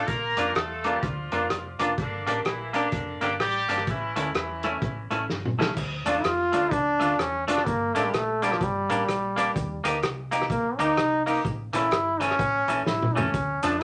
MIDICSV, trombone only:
0, 0, Header, 1, 2, 480
1, 0, Start_track
1, 0, Key_signature, -1, "minor"
1, 0, Tempo, 473560
1, 83, Time_signature, 4, 2, 24, 8
1, 14018, End_track
2, 0, Start_track
2, 0, Title_t, "Trombone"
2, 0, Program_c, 0, 57
2, 6141, Note_on_c, 0, 62, 96
2, 6325, Note_on_c, 0, 65, 109
2, 6341, Note_off_c, 0, 62, 0
2, 6808, Note_on_c, 0, 62, 113
2, 6823, Note_off_c, 0, 65, 0
2, 7298, Note_on_c, 0, 61, 100
2, 7313, Note_off_c, 0, 62, 0
2, 7576, Note_off_c, 0, 61, 0
2, 7583, Note_on_c, 0, 62, 95
2, 7768, Note_on_c, 0, 58, 97
2, 7783, Note_off_c, 0, 62, 0
2, 8063, Note_on_c, 0, 57, 93
2, 8078, Note_off_c, 0, 58, 0
2, 8162, Note_on_c, 0, 55, 81
2, 8177, Note_off_c, 0, 57, 0
2, 8266, Note_on_c, 0, 57, 91
2, 8281, Note_off_c, 0, 55, 0
2, 8564, Note_on_c, 0, 55, 104
2, 8579, Note_off_c, 0, 57, 0
2, 8653, Note_on_c, 0, 53, 92
2, 8668, Note_off_c, 0, 55, 0
2, 8750, Note_on_c, 0, 55, 92
2, 8765, Note_off_c, 0, 53, 0
2, 9991, Note_off_c, 0, 55, 0
2, 10643, Note_on_c, 0, 58, 104
2, 10936, Note_on_c, 0, 63, 122
2, 10952, Note_off_c, 0, 58, 0
2, 11408, Note_off_c, 0, 63, 0
2, 11414, Note_on_c, 0, 63, 95
2, 11588, Note_off_c, 0, 63, 0
2, 11903, Note_on_c, 0, 64, 106
2, 12378, Note_on_c, 0, 61, 117
2, 12393, Note_off_c, 0, 64, 0
2, 13037, Note_off_c, 0, 61, 0
2, 13043, Note_on_c, 0, 64, 87
2, 13333, Note_on_c, 0, 61, 98
2, 13348, Note_off_c, 0, 64, 0
2, 13816, Note_on_c, 0, 62, 97
2, 13831, Note_off_c, 0, 61, 0
2, 14012, Note_off_c, 0, 62, 0
2, 14018, End_track
0, 0, End_of_file